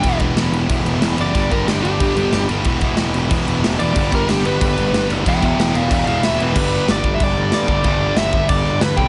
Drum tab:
CC |xxxxxxxx|xxxxxxxx|xxxxxxxx|xxxxxxxx|
SD |--o---o-|--o---o-|--o---o-|--o---o-|
BD |oo--o---|oo--o---|oo--o---|oo--o---|

CC |xxxxxxxx|x-x-x-x-|x-x-x-x-|
SD |--o---o-|--o---o-|--o---o-|
BD |oo--o---|o--oo--o|o--oo--o|